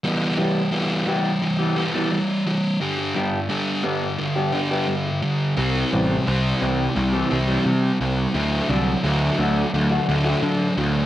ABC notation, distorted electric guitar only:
X:1
M:4/4
L:1/8
Q:1/4=87
K:Em
V:1 name="Distorted electric guitar" clef=bass
[E,G,B,] [E,G,] [E,G,B,] [E,G,] [E,G,] [E,G,B,] [E,G,] [E,G,] | [G,,D,G,] [G,,D,] [G,,D,G,] [G,,D,] [G,,D,] [G,,D,G,] [G,,D,] [G,,D,] | [C,G,C] [C,G,] [C,G,C] [C,G,] [C,G,] [C,G,C] [C,G,] [C,G,] | [D,F,A,] [D,F,] [D,F,A,] [D,F,] [D,F,] [D,F,A,] [D,F,] [D,F,] |]